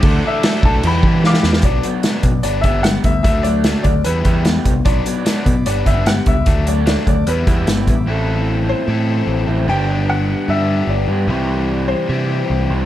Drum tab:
CC |x---x---x-------|----------------|----------------|----------------|
HH |----------------|x-x-x-x-x-x-x-x-|x-x-x-x-x-x-x-x-|x-x-x-x-x-x-x-x-|
SD |----o-------oooo|----o-------o---|----o-------o---|----o-------o---|
BD |o-----o---o-----|o-----o---o---o-|o-----o---o---o-|o-----o---o---o-|

CC |----------------|----------------|----------------|----------------|
HH |x-x-x-x-x-x-x-x-|----------------|----------------|----------------|
SD |----o-------o---|----------------|----------------|----------------|
BD |o-----o---o---o-|----------------|----------------|----------------|